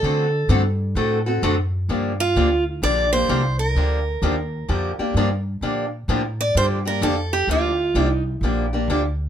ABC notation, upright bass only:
X:1
M:4/4
L:1/8
Q:"Swing" 1/4=129
K:Gm
V:1 name="Upright bass" clef=bass
D,2 G,,2 A,,2 ^F,,2 | G,,2 D,,2 B,,,2 C,,2 | D,,2 E,,2 F,, z G,,2 | B,,2 A,,2 G,,2 F,,2 |
D,,2 C,,2 B,,,2 D,,2 |]